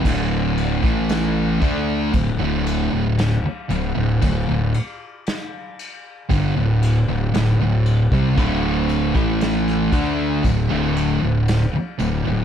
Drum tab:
CC |x-x-x-x-x-x-x-x-|x-x-x-x-x-x-x-x-|x-x-x-x-x-x-x-x-|
SD |----o-------o---|----o-------o---|----oo------o---|
BD |o--o--o-o-------|o-------o------o|o--o--o-o-------|